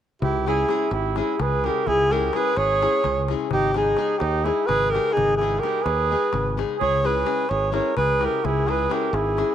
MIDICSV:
0, 0, Header, 1, 6, 480
1, 0, Start_track
1, 0, Tempo, 470219
1, 228, Time_signature, 7, 3, 24, 8
1, 9748, End_track
2, 0, Start_track
2, 0, Title_t, "Alto saxophone"
2, 0, Program_c, 0, 65
2, 226, Note_on_c, 0, 67, 93
2, 456, Note_off_c, 0, 67, 0
2, 501, Note_on_c, 0, 68, 92
2, 942, Note_on_c, 0, 67, 75
2, 957, Note_off_c, 0, 68, 0
2, 1202, Note_on_c, 0, 68, 75
2, 1217, Note_off_c, 0, 67, 0
2, 1450, Note_on_c, 0, 71, 91
2, 1465, Note_off_c, 0, 68, 0
2, 1689, Note_on_c, 0, 70, 89
2, 1705, Note_off_c, 0, 71, 0
2, 1922, Note_on_c, 0, 68, 112
2, 1937, Note_off_c, 0, 70, 0
2, 2169, Note_on_c, 0, 70, 94
2, 2184, Note_off_c, 0, 68, 0
2, 2414, Note_on_c, 0, 71, 95
2, 2430, Note_off_c, 0, 70, 0
2, 2628, Note_on_c, 0, 73, 109
2, 2644, Note_off_c, 0, 71, 0
2, 3367, Note_off_c, 0, 73, 0
2, 3600, Note_on_c, 0, 67, 114
2, 3825, Note_off_c, 0, 67, 0
2, 3854, Note_on_c, 0, 68, 91
2, 4267, Note_on_c, 0, 67, 85
2, 4282, Note_off_c, 0, 68, 0
2, 4540, Note_on_c, 0, 68, 85
2, 4555, Note_off_c, 0, 67, 0
2, 4760, Note_on_c, 0, 71, 104
2, 4775, Note_off_c, 0, 68, 0
2, 5003, Note_on_c, 0, 70, 93
2, 5018, Note_off_c, 0, 71, 0
2, 5241, Note_on_c, 0, 68, 113
2, 5256, Note_off_c, 0, 70, 0
2, 5475, Note_off_c, 0, 68, 0
2, 5481, Note_on_c, 0, 68, 91
2, 5710, Note_on_c, 0, 70, 90
2, 5725, Note_off_c, 0, 68, 0
2, 5956, Note_on_c, 0, 71, 89
2, 5971, Note_off_c, 0, 70, 0
2, 6709, Note_off_c, 0, 71, 0
2, 6946, Note_on_c, 0, 73, 100
2, 7207, Note_on_c, 0, 71, 90
2, 7222, Note_off_c, 0, 73, 0
2, 7654, Note_on_c, 0, 73, 84
2, 7669, Note_off_c, 0, 71, 0
2, 7902, Note_off_c, 0, 73, 0
2, 7908, Note_on_c, 0, 73, 81
2, 8124, Note_off_c, 0, 73, 0
2, 8136, Note_on_c, 0, 71, 94
2, 8421, Note_on_c, 0, 70, 81
2, 8436, Note_off_c, 0, 71, 0
2, 8634, Note_on_c, 0, 68, 98
2, 8649, Note_off_c, 0, 70, 0
2, 8888, Note_on_c, 0, 71, 87
2, 8903, Note_off_c, 0, 68, 0
2, 9123, Note_on_c, 0, 70, 78
2, 9138, Note_off_c, 0, 71, 0
2, 9331, Note_on_c, 0, 68, 82
2, 9346, Note_off_c, 0, 70, 0
2, 9748, Note_off_c, 0, 68, 0
2, 9748, End_track
3, 0, Start_track
3, 0, Title_t, "Trumpet"
3, 0, Program_c, 1, 56
3, 228, Note_on_c, 1, 64, 81
3, 457, Note_off_c, 1, 64, 0
3, 485, Note_on_c, 1, 64, 70
3, 949, Note_off_c, 1, 64, 0
3, 949, Note_on_c, 1, 64, 77
3, 1208, Note_off_c, 1, 64, 0
3, 1208, Note_on_c, 1, 64, 65
3, 1433, Note_on_c, 1, 68, 77
3, 1448, Note_off_c, 1, 64, 0
3, 1692, Note_on_c, 1, 67, 77
3, 1707, Note_off_c, 1, 68, 0
3, 1907, Note_on_c, 1, 64, 81
3, 1923, Note_off_c, 1, 67, 0
3, 2146, Note_on_c, 1, 67, 77
3, 2161, Note_off_c, 1, 64, 0
3, 2390, Note_on_c, 1, 68, 95
3, 2406, Note_off_c, 1, 67, 0
3, 2621, Note_off_c, 1, 68, 0
3, 2621, Note_on_c, 1, 68, 100
3, 3363, Note_off_c, 1, 68, 0
3, 3578, Note_on_c, 1, 63, 93
3, 3813, Note_off_c, 1, 63, 0
3, 3818, Note_on_c, 1, 63, 72
3, 4264, Note_off_c, 1, 63, 0
3, 4264, Note_on_c, 1, 63, 84
3, 4533, Note_on_c, 1, 64, 80
3, 4549, Note_off_c, 1, 63, 0
3, 4767, Note_on_c, 1, 68, 96
3, 4783, Note_off_c, 1, 64, 0
3, 5023, Note_on_c, 1, 67, 78
3, 5038, Note_off_c, 1, 68, 0
3, 5232, Note_on_c, 1, 63, 94
3, 5247, Note_off_c, 1, 67, 0
3, 5470, Note_off_c, 1, 63, 0
3, 5476, Note_on_c, 1, 64, 72
3, 5715, Note_on_c, 1, 67, 85
3, 5730, Note_off_c, 1, 64, 0
3, 5948, Note_on_c, 1, 68, 94
3, 5964, Note_off_c, 1, 67, 0
3, 6705, Note_off_c, 1, 68, 0
3, 6927, Note_on_c, 1, 68, 92
3, 7177, Note_off_c, 1, 68, 0
3, 7177, Note_on_c, 1, 68, 74
3, 7655, Note_off_c, 1, 68, 0
3, 7655, Note_on_c, 1, 68, 82
3, 7879, Note_off_c, 1, 68, 0
3, 7885, Note_on_c, 1, 70, 66
3, 8111, Note_off_c, 1, 70, 0
3, 8140, Note_on_c, 1, 68, 85
3, 8392, Note_on_c, 1, 67, 80
3, 8408, Note_off_c, 1, 68, 0
3, 8622, Note_on_c, 1, 64, 79
3, 8638, Note_off_c, 1, 67, 0
3, 8857, Note_on_c, 1, 68, 78
3, 8872, Note_off_c, 1, 64, 0
3, 9098, Note_on_c, 1, 67, 72
3, 9114, Note_off_c, 1, 68, 0
3, 9340, Note_on_c, 1, 64, 76
3, 9356, Note_off_c, 1, 67, 0
3, 9748, Note_off_c, 1, 64, 0
3, 9748, End_track
4, 0, Start_track
4, 0, Title_t, "Nylon-string guitar"
4, 0, Program_c, 2, 24
4, 473, Note_on_c, 2, 56, 73
4, 481, Note_on_c, 2, 61, 56
4, 484, Note_on_c, 2, 64, 57
4, 488, Note_on_c, 2, 68, 69
4, 658, Note_off_c, 2, 56, 0
4, 660, Note_off_c, 2, 61, 0
4, 663, Note_off_c, 2, 64, 0
4, 665, Note_off_c, 2, 68, 0
4, 697, Note_on_c, 2, 56, 69
4, 704, Note_on_c, 2, 61, 63
4, 712, Note_on_c, 2, 64, 61
4, 717, Note_on_c, 2, 68, 80
4, 885, Note_off_c, 2, 56, 0
4, 886, Note_off_c, 2, 61, 0
4, 892, Note_off_c, 2, 64, 0
4, 894, Note_off_c, 2, 68, 0
4, 1182, Note_on_c, 2, 56, 66
4, 1185, Note_on_c, 2, 61, 49
4, 1193, Note_on_c, 2, 64, 57
4, 1200, Note_on_c, 2, 68, 65
4, 1373, Note_off_c, 2, 56, 0
4, 1374, Note_off_c, 2, 61, 0
4, 1378, Note_off_c, 2, 64, 0
4, 1382, Note_off_c, 2, 68, 0
4, 1671, Note_on_c, 2, 56, 63
4, 1682, Note_on_c, 2, 61, 46
4, 1691, Note_on_c, 2, 64, 49
4, 1695, Note_on_c, 2, 68, 64
4, 1862, Note_off_c, 2, 56, 0
4, 1868, Note_off_c, 2, 61, 0
4, 1872, Note_off_c, 2, 64, 0
4, 1873, Note_off_c, 2, 68, 0
4, 2151, Note_on_c, 2, 56, 59
4, 2156, Note_on_c, 2, 61, 59
4, 2161, Note_on_c, 2, 64, 63
4, 2170, Note_on_c, 2, 68, 74
4, 2338, Note_off_c, 2, 56, 0
4, 2340, Note_off_c, 2, 61, 0
4, 2343, Note_off_c, 2, 64, 0
4, 2348, Note_off_c, 2, 68, 0
4, 2386, Note_on_c, 2, 56, 67
4, 2395, Note_on_c, 2, 61, 55
4, 2405, Note_on_c, 2, 64, 57
4, 2409, Note_on_c, 2, 68, 74
4, 2570, Note_off_c, 2, 56, 0
4, 2574, Note_off_c, 2, 61, 0
4, 2580, Note_off_c, 2, 64, 0
4, 2580, Note_off_c, 2, 68, 0
4, 2871, Note_on_c, 2, 56, 66
4, 2878, Note_on_c, 2, 61, 51
4, 2882, Note_on_c, 2, 64, 62
4, 2889, Note_on_c, 2, 68, 71
4, 3058, Note_off_c, 2, 56, 0
4, 3060, Note_off_c, 2, 61, 0
4, 3063, Note_off_c, 2, 64, 0
4, 3067, Note_off_c, 2, 68, 0
4, 3356, Note_on_c, 2, 56, 62
4, 3366, Note_on_c, 2, 61, 59
4, 3373, Note_on_c, 2, 64, 61
4, 3379, Note_on_c, 2, 68, 75
4, 3545, Note_off_c, 2, 56, 0
4, 3550, Note_off_c, 2, 61, 0
4, 3553, Note_off_c, 2, 64, 0
4, 3556, Note_off_c, 2, 68, 0
4, 3829, Note_on_c, 2, 56, 55
4, 3837, Note_on_c, 2, 59, 68
4, 3839, Note_on_c, 2, 63, 51
4, 3843, Note_on_c, 2, 68, 72
4, 4017, Note_off_c, 2, 56, 0
4, 4021, Note_off_c, 2, 63, 0
4, 4022, Note_off_c, 2, 59, 0
4, 4024, Note_off_c, 2, 68, 0
4, 4050, Note_on_c, 2, 56, 64
4, 4057, Note_on_c, 2, 59, 58
4, 4063, Note_on_c, 2, 63, 62
4, 4068, Note_on_c, 2, 68, 73
4, 4242, Note_off_c, 2, 56, 0
4, 4246, Note_off_c, 2, 59, 0
4, 4249, Note_off_c, 2, 63, 0
4, 4250, Note_off_c, 2, 68, 0
4, 4536, Note_on_c, 2, 56, 63
4, 4547, Note_on_c, 2, 59, 62
4, 4551, Note_on_c, 2, 63, 60
4, 4556, Note_on_c, 2, 68, 59
4, 4730, Note_off_c, 2, 56, 0
4, 4736, Note_off_c, 2, 63, 0
4, 4737, Note_off_c, 2, 59, 0
4, 4740, Note_off_c, 2, 68, 0
4, 5038, Note_on_c, 2, 56, 53
4, 5042, Note_on_c, 2, 59, 51
4, 5053, Note_on_c, 2, 63, 55
4, 5058, Note_on_c, 2, 68, 59
4, 5226, Note_off_c, 2, 56, 0
4, 5227, Note_off_c, 2, 59, 0
4, 5233, Note_off_c, 2, 63, 0
4, 5235, Note_off_c, 2, 68, 0
4, 5526, Note_on_c, 2, 56, 60
4, 5529, Note_on_c, 2, 59, 53
4, 5534, Note_on_c, 2, 63, 60
4, 5542, Note_on_c, 2, 68, 77
4, 5705, Note_off_c, 2, 56, 0
4, 5706, Note_off_c, 2, 59, 0
4, 5709, Note_off_c, 2, 63, 0
4, 5713, Note_off_c, 2, 68, 0
4, 5750, Note_on_c, 2, 56, 70
4, 5757, Note_on_c, 2, 63, 60
4, 5758, Note_on_c, 2, 59, 61
4, 5769, Note_on_c, 2, 68, 66
4, 5932, Note_off_c, 2, 56, 0
4, 5934, Note_off_c, 2, 59, 0
4, 5935, Note_off_c, 2, 63, 0
4, 5941, Note_off_c, 2, 68, 0
4, 6234, Note_on_c, 2, 56, 58
4, 6238, Note_on_c, 2, 59, 52
4, 6240, Note_on_c, 2, 63, 57
4, 6246, Note_on_c, 2, 68, 71
4, 6419, Note_off_c, 2, 56, 0
4, 6420, Note_off_c, 2, 59, 0
4, 6421, Note_off_c, 2, 63, 0
4, 6425, Note_off_c, 2, 68, 0
4, 6707, Note_on_c, 2, 56, 66
4, 6712, Note_on_c, 2, 59, 57
4, 6722, Note_on_c, 2, 63, 54
4, 6727, Note_on_c, 2, 68, 78
4, 6899, Note_off_c, 2, 56, 0
4, 6901, Note_off_c, 2, 59, 0
4, 6906, Note_off_c, 2, 63, 0
4, 6909, Note_off_c, 2, 68, 0
4, 7175, Note_on_c, 2, 56, 61
4, 7181, Note_on_c, 2, 61, 67
4, 7191, Note_on_c, 2, 64, 55
4, 7196, Note_on_c, 2, 68, 70
4, 7369, Note_off_c, 2, 56, 0
4, 7372, Note_off_c, 2, 61, 0
4, 7377, Note_off_c, 2, 64, 0
4, 7378, Note_off_c, 2, 68, 0
4, 7399, Note_on_c, 2, 56, 62
4, 7408, Note_on_c, 2, 61, 62
4, 7411, Note_on_c, 2, 64, 69
4, 7415, Note_on_c, 2, 68, 71
4, 7595, Note_off_c, 2, 56, 0
4, 7599, Note_off_c, 2, 61, 0
4, 7600, Note_off_c, 2, 64, 0
4, 7603, Note_off_c, 2, 68, 0
4, 7879, Note_on_c, 2, 56, 67
4, 7885, Note_on_c, 2, 61, 57
4, 7887, Note_on_c, 2, 64, 53
4, 7898, Note_on_c, 2, 68, 60
4, 8081, Note_off_c, 2, 56, 0
4, 8082, Note_off_c, 2, 61, 0
4, 8084, Note_off_c, 2, 64, 0
4, 8089, Note_off_c, 2, 68, 0
4, 8363, Note_on_c, 2, 56, 57
4, 8369, Note_on_c, 2, 61, 44
4, 8375, Note_on_c, 2, 64, 58
4, 8381, Note_on_c, 2, 68, 58
4, 8566, Note_off_c, 2, 56, 0
4, 8569, Note_off_c, 2, 61, 0
4, 8572, Note_off_c, 2, 64, 0
4, 8575, Note_off_c, 2, 68, 0
4, 8845, Note_on_c, 2, 56, 62
4, 8851, Note_on_c, 2, 61, 54
4, 8856, Note_on_c, 2, 64, 56
4, 8860, Note_on_c, 2, 68, 71
4, 9043, Note_off_c, 2, 56, 0
4, 9047, Note_off_c, 2, 61, 0
4, 9047, Note_off_c, 2, 64, 0
4, 9050, Note_off_c, 2, 68, 0
4, 9080, Note_on_c, 2, 56, 77
4, 9085, Note_on_c, 2, 61, 58
4, 9093, Note_on_c, 2, 64, 61
4, 9096, Note_on_c, 2, 68, 71
4, 9275, Note_off_c, 2, 56, 0
4, 9277, Note_off_c, 2, 61, 0
4, 9281, Note_off_c, 2, 68, 0
4, 9282, Note_off_c, 2, 64, 0
4, 9563, Note_on_c, 2, 56, 63
4, 9570, Note_on_c, 2, 61, 53
4, 9573, Note_on_c, 2, 64, 49
4, 9582, Note_on_c, 2, 68, 64
4, 9748, Note_off_c, 2, 56, 0
4, 9748, Note_off_c, 2, 61, 0
4, 9748, Note_off_c, 2, 64, 0
4, 9748, Note_off_c, 2, 68, 0
4, 9748, End_track
5, 0, Start_track
5, 0, Title_t, "Fingered electric bass"
5, 0, Program_c, 3, 33
5, 225, Note_on_c, 3, 37, 92
5, 648, Note_off_c, 3, 37, 0
5, 931, Note_on_c, 3, 32, 99
5, 1225, Note_off_c, 3, 32, 0
5, 1424, Note_on_c, 3, 37, 94
5, 1717, Note_off_c, 3, 37, 0
5, 1916, Note_on_c, 3, 37, 91
5, 2337, Note_off_c, 3, 37, 0
5, 2623, Note_on_c, 3, 32, 99
5, 2914, Note_off_c, 3, 32, 0
5, 3114, Note_on_c, 3, 37, 96
5, 3404, Note_off_c, 3, 37, 0
5, 3604, Note_on_c, 3, 32, 88
5, 4022, Note_off_c, 3, 32, 0
5, 4300, Note_on_c, 3, 39, 109
5, 4592, Note_off_c, 3, 39, 0
5, 4786, Note_on_c, 3, 32, 95
5, 5078, Note_off_c, 3, 32, 0
5, 5278, Note_on_c, 3, 32, 89
5, 5697, Note_off_c, 3, 32, 0
5, 5977, Note_on_c, 3, 39, 93
5, 6269, Note_off_c, 3, 39, 0
5, 6467, Note_on_c, 3, 32, 97
5, 6758, Note_off_c, 3, 32, 0
5, 6956, Note_on_c, 3, 37, 89
5, 7375, Note_off_c, 3, 37, 0
5, 7663, Note_on_c, 3, 32, 97
5, 7953, Note_off_c, 3, 32, 0
5, 8139, Note_on_c, 3, 37, 87
5, 8432, Note_off_c, 3, 37, 0
5, 8621, Note_on_c, 3, 37, 89
5, 9045, Note_off_c, 3, 37, 0
5, 9318, Note_on_c, 3, 32, 110
5, 9615, Note_off_c, 3, 32, 0
5, 9748, End_track
6, 0, Start_track
6, 0, Title_t, "Darbuka"
6, 227, Note_on_c, 9, 64, 80
6, 329, Note_off_c, 9, 64, 0
6, 485, Note_on_c, 9, 63, 61
6, 587, Note_off_c, 9, 63, 0
6, 593, Note_on_c, 9, 63, 29
6, 695, Note_off_c, 9, 63, 0
6, 701, Note_on_c, 9, 63, 63
6, 803, Note_off_c, 9, 63, 0
6, 930, Note_on_c, 9, 63, 60
6, 1032, Note_off_c, 9, 63, 0
6, 1182, Note_on_c, 9, 63, 61
6, 1284, Note_off_c, 9, 63, 0
6, 1424, Note_on_c, 9, 63, 72
6, 1424, Note_on_c, 9, 64, 59
6, 1526, Note_off_c, 9, 63, 0
6, 1526, Note_off_c, 9, 64, 0
6, 1673, Note_on_c, 9, 63, 54
6, 1775, Note_off_c, 9, 63, 0
6, 1802, Note_on_c, 9, 63, 29
6, 1904, Note_off_c, 9, 63, 0
6, 1906, Note_on_c, 9, 64, 75
6, 2008, Note_off_c, 9, 64, 0
6, 2155, Note_on_c, 9, 63, 54
6, 2257, Note_off_c, 9, 63, 0
6, 2271, Note_on_c, 9, 63, 25
6, 2373, Note_off_c, 9, 63, 0
6, 2379, Note_on_c, 9, 63, 79
6, 2481, Note_off_c, 9, 63, 0
6, 2618, Note_on_c, 9, 63, 66
6, 2720, Note_off_c, 9, 63, 0
6, 2884, Note_on_c, 9, 63, 70
6, 2986, Note_off_c, 9, 63, 0
6, 3006, Note_on_c, 9, 63, 28
6, 3103, Note_off_c, 9, 63, 0
6, 3103, Note_on_c, 9, 63, 66
6, 3103, Note_on_c, 9, 64, 66
6, 3205, Note_off_c, 9, 63, 0
6, 3205, Note_off_c, 9, 64, 0
6, 3352, Note_on_c, 9, 63, 56
6, 3454, Note_off_c, 9, 63, 0
6, 3474, Note_on_c, 9, 63, 29
6, 3576, Note_off_c, 9, 63, 0
6, 3579, Note_on_c, 9, 64, 95
6, 3681, Note_off_c, 9, 64, 0
6, 3822, Note_on_c, 9, 63, 64
6, 3924, Note_off_c, 9, 63, 0
6, 3938, Note_on_c, 9, 63, 29
6, 4040, Note_off_c, 9, 63, 0
6, 4048, Note_on_c, 9, 63, 72
6, 4150, Note_off_c, 9, 63, 0
6, 4289, Note_on_c, 9, 63, 65
6, 4391, Note_off_c, 9, 63, 0
6, 4550, Note_on_c, 9, 63, 62
6, 4652, Note_off_c, 9, 63, 0
6, 4674, Note_on_c, 9, 63, 30
6, 4776, Note_off_c, 9, 63, 0
6, 4785, Note_on_c, 9, 63, 65
6, 4785, Note_on_c, 9, 64, 65
6, 4887, Note_off_c, 9, 63, 0
6, 4887, Note_off_c, 9, 64, 0
6, 5050, Note_on_c, 9, 63, 62
6, 5152, Note_off_c, 9, 63, 0
6, 5166, Note_on_c, 9, 63, 28
6, 5268, Note_off_c, 9, 63, 0
6, 5277, Note_on_c, 9, 64, 82
6, 5379, Note_off_c, 9, 64, 0
6, 5401, Note_on_c, 9, 63, 23
6, 5503, Note_off_c, 9, 63, 0
6, 5526, Note_on_c, 9, 63, 57
6, 5628, Note_off_c, 9, 63, 0
6, 5640, Note_on_c, 9, 63, 29
6, 5742, Note_off_c, 9, 63, 0
6, 5751, Note_on_c, 9, 63, 61
6, 5853, Note_off_c, 9, 63, 0
6, 5981, Note_on_c, 9, 63, 68
6, 6084, Note_off_c, 9, 63, 0
6, 6114, Note_on_c, 9, 63, 27
6, 6216, Note_off_c, 9, 63, 0
6, 6358, Note_on_c, 9, 63, 25
6, 6458, Note_off_c, 9, 63, 0
6, 6458, Note_on_c, 9, 63, 72
6, 6458, Note_on_c, 9, 64, 57
6, 6560, Note_off_c, 9, 63, 0
6, 6560, Note_off_c, 9, 64, 0
6, 6593, Note_on_c, 9, 63, 20
6, 6695, Note_off_c, 9, 63, 0
6, 6726, Note_on_c, 9, 63, 64
6, 6828, Note_off_c, 9, 63, 0
6, 6846, Note_on_c, 9, 63, 24
6, 6948, Note_off_c, 9, 63, 0
6, 6953, Note_on_c, 9, 64, 78
6, 7056, Note_off_c, 9, 64, 0
6, 7193, Note_on_c, 9, 63, 58
6, 7295, Note_off_c, 9, 63, 0
6, 7317, Note_on_c, 9, 63, 26
6, 7418, Note_off_c, 9, 63, 0
6, 7418, Note_on_c, 9, 63, 68
6, 7520, Note_off_c, 9, 63, 0
6, 7645, Note_on_c, 9, 63, 57
6, 7747, Note_off_c, 9, 63, 0
6, 7897, Note_on_c, 9, 63, 61
6, 7999, Note_off_c, 9, 63, 0
6, 8025, Note_on_c, 9, 63, 28
6, 8127, Note_off_c, 9, 63, 0
6, 8132, Note_on_c, 9, 63, 71
6, 8132, Note_on_c, 9, 64, 65
6, 8234, Note_off_c, 9, 63, 0
6, 8234, Note_off_c, 9, 64, 0
6, 8379, Note_on_c, 9, 63, 64
6, 8481, Note_off_c, 9, 63, 0
6, 8510, Note_on_c, 9, 63, 32
6, 8612, Note_off_c, 9, 63, 0
6, 8621, Note_on_c, 9, 64, 85
6, 8723, Note_off_c, 9, 64, 0
6, 8868, Note_on_c, 9, 63, 58
6, 8970, Note_off_c, 9, 63, 0
6, 8985, Note_on_c, 9, 63, 28
6, 9087, Note_off_c, 9, 63, 0
6, 9099, Note_on_c, 9, 63, 80
6, 9201, Note_off_c, 9, 63, 0
6, 9330, Note_on_c, 9, 63, 65
6, 9432, Note_off_c, 9, 63, 0
6, 9577, Note_on_c, 9, 63, 60
6, 9680, Note_off_c, 9, 63, 0
6, 9706, Note_on_c, 9, 63, 29
6, 9748, Note_off_c, 9, 63, 0
6, 9748, End_track
0, 0, End_of_file